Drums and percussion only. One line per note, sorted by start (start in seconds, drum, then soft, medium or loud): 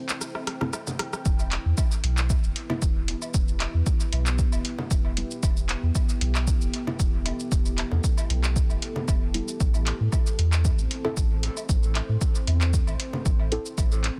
0.09 clap medium
0.09 shaker soft
0.21 cross-stick medium
0.21 shaker medium
0.35 cross-stick medium
0.35 low woodblock soft
0.47 cross-stick medium
0.47 closed hi-hat medium
0.61 cross-stick medium
0.61 low conga loud
0.73 cross-stick medium
0.73 low woodblock medium
0.73 shaker medium
0.87 low conga medium
0.87 shaker soft
0.99 cross-stick loud
0.99 closed hi-hat medium
1.13 cross-stick medium
1.13 shaker soft
1.25 kick loud
1.25 shaker medium
1.39 low woodblock soft
1.39 shaker soft
1.52 clap medium
1.52 closed hi-hat medium
1.78 kick loud
1.78 low woodblock medium
1.78 shaker medium
1.91 shaker soft
2.04 closed hi-hat medium
2.18 clap medium
2.18 shaker soft
2.30 kick loud
2.30 low woodblock soft
2.30 shaker medium
2.44 shaker soft
2.56 closed hi-hat medium
2.70 low conga loud
2.70 low woodblock medium
2.82 kick loud
2.82 shaker medium
3.08 closed hi-hat medium
3.22 low woodblock soft
3.22 shaker soft
3.34 kick loud
3.34 shaker medium
3.48 shaker soft
3.60 clap medium
3.60 closed hi-hat medium
3.60 low woodblock medium
3.86 kick loud
3.86 shaker medium
4.00 shaker soft
4.13 closed hi-hat medium
4.13 low woodblock soft
4.26 clap medium
4.26 shaker soft
4.39 kick loud
4.39 shaker medium
4.52 low woodblock medium
4.52 shaker soft
4.65 closed hi-hat medium
4.79 low conga loud
4.91 kick loud
4.91 shaker medium
5.05 low woodblock soft
5.17 closed hi-hat medium
5.31 shaker soft
5.43 kick loud
5.43 low woodblock medium
5.43 shaker medium
5.57 shaker soft
5.69 clap medium
5.69 closed hi-hat medium
5.95 kick loud
5.95 low woodblock soft
5.95 shaker medium
6.09 shaker soft
6.21 closed hi-hat medium
6.35 clap medium
6.35 low woodblock medium
6.35 shaker soft
6.47 kick loud
6.47 shaker medium
6.61 shaker soft
6.74 closed hi-hat medium
6.87 low conga loud
6.87 low woodblock soft
7.00 kick loud
7.00 shaker medium
7.26 closed hi-hat medium
7.26 low woodblock medium
7.40 shaker soft
7.52 kick loud
7.52 shaker medium
7.66 shaker soft
7.78 clap medium
7.78 closed hi-hat medium
7.78 low woodblock soft
7.92 low conga medium
8.04 kick loud
8.04 shaker medium
8.18 low woodblock medium
8.18 shaker soft
8.30 closed hi-hat medium
8.44 clap medium
8.44 shaker soft
8.56 kick loud
8.56 shaker medium
8.70 low woodblock soft
8.70 shaker soft
8.82 closed hi-hat medium
8.96 low conga medium
9.08 kick loud
9.08 low woodblock medium
9.08 shaker medium
9.34 closed hi-hat medium
9.48 shaker soft
9.60 kick loud
9.60 shaker medium
9.74 low woodblock soft
9.74 shaker soft
9.87 clap medium
9.87 closed hi-hat medium
10.12 kick loud
10.12 low woodblock medium
10.12 shaker medium
10.26 shaker soft
10.39 closed hi-hat medium
10.53 clap medium
10.53 shaker soft
10.65 kick loud
10.65 low woodblock soft
10.65 shaker medium
10.79 shaker soft
10.91 closed hi-hat medium
11.05 low conga medium
11.05 low woodblock medium
11.17 kick loud
11.17 shaker medium
11.43 closed hi-hat medium
11.57 low woodblock soft
11.57 shaker soft
11.69 kick loud
11.69 shaker medium
11.83 shaker soft
11.95 clap medium
11.95 closed hi-hat medium
11.95 low woodblock medium
12.21 kick loud
12.21 shaker medium
12.35 shaker soft
12.47 closed hi-hat medium
12.47 low woodblock soft
12.61 clap medium
12.61 shaker soft
12.74 kick loud
12.74 shaker medium
12.87 low woodblock medium
12.87 shaker soft
13.00 closed hi-hat medium
13.13 low conga medium
13.26 kick loud
13.26 shaker medium
13.39 low woodblock soft
13.52 closed hi-hat medium
13.66 shaker soft
13.78 kick loud
13.78 low woodblock medium
13.78 shaker medium
13.92 shaker soft
14.04 clap medium
14.04 closed hi-hat medium